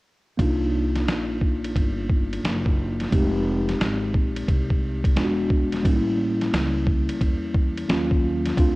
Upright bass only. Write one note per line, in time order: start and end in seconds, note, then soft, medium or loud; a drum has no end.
0.39 1.07 C2 loud
1.07 1.72 A#1 medium
1.75 2.40 G1 medium
2.44 3.09 F#1 medium
3.12 3.77 F1 medium
3.80 4.13 G#1 medium
4.14 4.47 A#1 medium
4.48 5.13 C2 medium
5.17 5.82 E1 medium
5.85 6.50 A1 loud
6.53 7.06 C#2 medium
7.09 muted upright bass stroke soft
7.21 7.86 E2 medium
7.89 8.54 D#2 medium
8.57 8.75 D2 loud